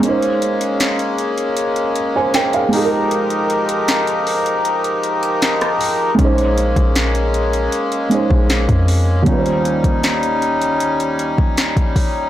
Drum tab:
HH |xxxxxxxxxxx-xxo-|xxxxxxoxxxxxxxo-|xxxxxxxxxxx-xxo-|xxxxxxxxxxx-xxo-|
SD |----o-------o---|----o-------or--|----o-------o---|----o-------o---|
BD |----------------|----------------|o--o-------o-o--|o--o-------o-oo-|